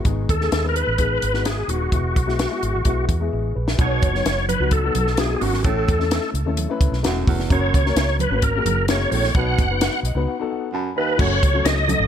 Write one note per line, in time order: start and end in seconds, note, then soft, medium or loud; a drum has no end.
0.04 0.25 G#1 medium
0.04 0.32 G#3 medium
0.04 0.32 B3 medium
0.04 0.32 D#4 medium
0.04 0.33 G#4 medium
0.04 kick medium
0.04 closed hi-hat medium
0.29 0.49 D#2 medium
0.29 0.66 A4 loud
0.29 kick medium
0.29 closed hi-hat medium
0.40 0.58 G#3 medium
0.40 0.59 B3 medium
0.40 0.59 D#4 medium
0.40 0.59 G#4 medium
0.40 snare soft
0.52 0.82 D#2 medium
0.52 snare loud
0.52 closed hi-hat medium
0.63 0.91 G#3 medium
0.63 0.91 B3 medium
0.63 0.91 D#4 medium
0.63 0.91 B4 medium
0.69 0.76 A#4 medium
0.76 1.48 B4 loud
0.76 closed hi-hat medium
0.87 1.17 A1 medium
0.98 1.25 G#3 medium
0.98 1.26 B3 medium
0.98 1.26 D#4 medium
0.98 1.26 G#4 medium
0.98 kick medium
0.98 closed hi-hat medium
1.22 1.62 G#1 medium
1.22 closed hi-hat medium
1.32 1.60 G#3 medium
1.32 1.60 B3 medium
1.32 1.61 D#4 medium
1.32 1.61 F#4 medium
1.32 snare soft
1.45 1.70 G#4 medium
1.45 snare loud
1.45 closed hi-hat medium
1.67 1.88 D#1 medium
1.67 1.86 G#3 medium
1.67 1.86 B3 medium
1.67 1.87 D#4 medium
1.67 3.05 F#4 medium
1.67 1.87 G#4 medium
1.67 closed hi-hat medium
1.91 2.12 E1 loud
1.91 2.19 G#3 medium
1.91 2.19 B3 medium
1.91 2.19 E4 medium
1.91 2.20 F#4 medium
1.91 kick loud
1.91 closed hi-hat medium
2.16 2.45 B1 medium
2.16 kick medium
2.16 closed hi-hat medium
2.26 2.45 G#3 medium
2.26 2.45 B3 medium
2.26 2.45 E4 medium
2.26 2.46 F#4 medium
2.26 snare soft
2.39 snare loud
2.39 closed hi-hat medium
2.49 2.77 G#3 medium
2.49 2.77 B3 medium
2.49 2.78 E4 medium
2.49 2.78 G#4 medium
2.63 2.72 G#1 medium
2.63 closed hi-hat medium
2.74 2.84 A1 medium
2.85 3.05 B1 medium
2.85 3.12 G#3 medium
2.85 3.12 B3 medium
2.85 3.13 E4 medium
2.85 3.13 F#4 medium
2.85 kick medium
2.85 closed hi-hat medium
3.09 3.28 E2 medium
3.09 kick medium
3.09 closed hi-hat medium
3.19 3.47 G#3 medium
3.19 3.48 B3 medium
3.19 3.32 E4 medium
3.19 3.31 G#4 medium
3.32 3.52 A1 medium
3.32 3.55 E4 medium
3.32 3.54 G#4 medium
3.55 3.76 A#1 medium
3.55 4.00 G#4 soft
3.55 4.00 B4 medium
3.68 snare medium
3.78 3.98 B1 loud
3.78 4.12 B2 medium
3.78 4.05 F#3 medium
3.78 4.06 B3 medium
3.78 4.06 D#4 medium
3.78 4.07 F#4 medium
3.78 4.46 C#5 loud
3.78 kick loud
3.78 closed hi-hat medium
3.78 muted conga soft
4.02 4.22 F#1 medium
4.02 kick loud
4.02 closed hi-hat medium
4.02 muted conga soft
4.13 4.49 F#3 medium
4.13 4.50 B3 medium
4.13 4.50 D#4 medium
4.13 4.50 F#4 medium
4.13 snare soft
4.25 4.55 F#1 medium
4.25 snare loud
4.25 closed hi-hat loud
4.25 high conga medium
4.49 4.73 B4 loud
4.49 closed hi-hat medium
4.49 low conga medium
4.60 4.89 C#2 medium
4.60 4.78 F#3 medium
4.60 4.78 B3 medium
4.60 4.79 D#4 medium
4.60 4.79 F#4 medium
4.71 5.20 A4 medium
4.71 kick medium
4.71 closed hi-hat medium
4.71 muted conga soft
4.83 5.10 F#3 medium
4.83 5.11 B3 medium
4.83 5.11 D#4 medium
4.83 5.11 F#4 medium
4.95 5.34 B1 medium
4.95 closed hi-hat medium
4.95 muted conga soft
4.95 low conga medium
5.07 snare soft
5.17 5.54 F#3 medium
5.17 5.54 B3 medium
5.17 5.24 D4 medium
5.17 5.55 F#4 medium
5.17 5.35 G#4 medium
5.17 snare loud
5.17 closed hi-hat medium
5.17 high conga medium
5.25 5.58 D#4 medium
5.36 5.42 G#4 medium
5.41 5.61 G#1 medium
5.41 5.60 F#2 medium
5.41 5.63 F#4 medium
5.41 open hi-hat soft
5.41 high conga medium
5.54 snare soft
5.64 5.84 A1 loud
5.64 5.97 A2 medium
5.64 5.92 A3 medium
5.64 5.92 C#4 medium
5.64 5.92 E4 medium
5.64 6.30 A4 medium
5.64 5.93 A4 medium
5.64 kick loud
5.64 closed hi-hat medium
5.64 muted conga soft
5.88 6.18 E2 medium
5.88 kick loud
5.88 closed hi-hat medium
5.88 muted conga medium
5.99 6.35 A3 medium
5.99 6.36 C#4 medium
5.99 6.36 E4 medium
5.99 6.36 A4 medium
5.99 snare soft
6.11 snare loud
6.11 closed hi-hat loud
6.11 high conga medium
6.34 6.44 C#2 loud
6.34 closed hi-hat medium
6.45 6.65 D#2 medium
6.45 6.64 A3 medium
6.45 6.64 C#4 medium
6.45 6.64 E4 medium
6.45 6.65 A4 loud
6.57 closed hi-hat medium
6.57 muted conga soft
6.57 low conga medium
6.69 6.96 A3 medium
6.69 6.96 C#4 medium
6.69 6.96 E4 medium
6.69 6.97 B4 loud
6.81 6.90 C#2 medium
6.81 kick medium
6.81 closed hi-hat medium
6.81 muted conga soft
6.92 7.02 B1 medium
6.92 snare soft
7.03 7.23 E1 medium
7.03 7.23 F#2 medium
7.03 7.39 A3 medium
7.03 7.39 C#4 medium
7.03 7.40 E4 medium
7.03 7.40 F#4 loud
7.03 snare loud
7.03 closed hi-hat medium
7.03 high conga medium
7.27 7.47 F1 medium
7.27 7.46 E2 medium
7.27 kick loud
7.27 open hi-hat soft
7.27 high conga medium
7.39 snare soft
7.49 7.70 F#1 loud
7.49 7.83 F#2 medium
7.49 7.76 A#3 medium
7.49 7.77 C#4 medium
7.49 7.77 F#4 medium
7.49 7.77 A#4 medium
7.49 8.17 C#5 medium
7.49 kick loud
7.49 closed hi-hat medium
7.49 muted conga soft
7.74 7.93 C#2 medium
7.74 kick loud
7.74 closed hi-hat medium
7.74 muted conga soft
7.85 8.21 A#3 medium
7.85 8.21 C#4 medium
7.85 8.21 F#4 medium
7.85 8.21 A#4 medium
7.85 snare soft
7.96 8.25 C#2 medium
7.96 snare loud
7.96 closed hi-hat loud
7.96 high conga medium
8.19 8.44 B4 medium
8.19 closed hi-hat medium
8.19 low conga medium
8.30 8.60 G#1 medium
8.30 8.49 A#3 medium
8.30 8.49 C#4 medium
8.30 8.49 F#4 medium
8.30 8.50 A#4 medium
8.42 8.86 A#4 medium
8.42 kick medium
8.42 closed hi-hat medium
8.42 muted conga soft
8.55 8.81 A#3 medium
8.55 8.81 C#4 medium
8.55 8.82 F#4 medium
8.55 8.82 G#4 medium
8.65 9.04 F#1 loud
8.65 closed hi-hat medium
8.65 muted conga soft
8.65 low conga medium
8.88 9.24 A#3 medium
8.88 9.25 C#4 medium
8.88 9.25 F#4 medium
8.88 9.25 G#4 medium
8.88 9.10 C#5 medium
8.88 snare loud
8.88 closed hi-hat medium
8.88 high conga medium
9.11 9.31 A#1 medium
9.11 9.30 A2 medium
9.11 9.35 C#5 medium
9.11 open hi-hat soft
9.11 high conga medium
9.23 snare soft
9.35 9.54 B1 loud
9.35 9.68 B2 medium
9.35 9.62 B3 medium
9.35 9.62 D#4 medium
9.35 9.63 F#4 medium
9.35 9.63 B4 medium
9.35 10.00 F#5 medium
9.35 kick loud
9.35 closed hi-hat medium
9.35 muted conga soft
9.58 9.87 F#1 medium
9.58 kick loud
9.58 closed hi-hat medium
9.58 muted conga medium
9.70 10.05 B3 medium
9.70 10.05 D#4 medium
9.70 10.06 F#4 medium
9.70 10.06 B4 medium
9.81 snare loud
9.81 closed hi-hat medium
9.81 high conga medium
10.03 10.13 B1 medium
10.03 10.26 D#5 medium
10.03 closed hi-hat medium
10.15 10.25 C#2 medium
10.15 10.33 B3 medium
10.15 10.33 D#4 medium
10.15 10.34 F#4 medium
10.15 10.34 B4 medium
10.28 10.49 F#5 medium
10.39 10.66 B3 medium
10.39 10.66 D#4 medium
10.39 10.66 F#4 medium
10.39 10.67 A4 loud
10.51 10.72 F#5 medium
10.72 10.91 F#2 medium
10.72 10.96 G#5 medium
10.72 10.95 A5 medium
10.72 10.94 B5 medium
10.96 11.15 D#2 medium
10.96 11.40 B4 medium
10.96 11.21 B4 medium
10.96 11.40 D#5 medium
10.96 11.17 B5 medium
11.18 11.38 F#1 loud
11.18 11.38 F#2 medium
11.18 11.45 F#3 medium
11.18 11.45 A3 medium
11.18 11.45 C#4 medium
11.18 11.45 F#4 medium
11.18 11.46 A4 medium
11.18 11.67 C#5 loud
11.18 kick loud
11.18 crash loud
11.18 muted conga soft
11.43 11.62 C#2 medium
11.43 kick loud
11.43 closed hi-hat medium
11.43 muted conga soft
11.54 11.80 F#3 medium
11.54 11.80 A3 medium
11.54 11.81 C#4 medium
11.54 11.81 F#4 medium
11.54 11.81 A4 medium
11.65 11.94 C#2 medium
11.65 12.07 D#5 loud
11.65 snare loud
11.65 closed hi-hat loud
11.65 high conga medium
11.88 12.06 F#3 medium
11.88 12.06 A3 medium
11.88 12.06 C#4 medium
11.88 12.06 F#4 medium
11.88 12.07 A4 medium
11.88 closed hi-hat medium
11.88 low conga medium
12.00 12.07 G#1 medium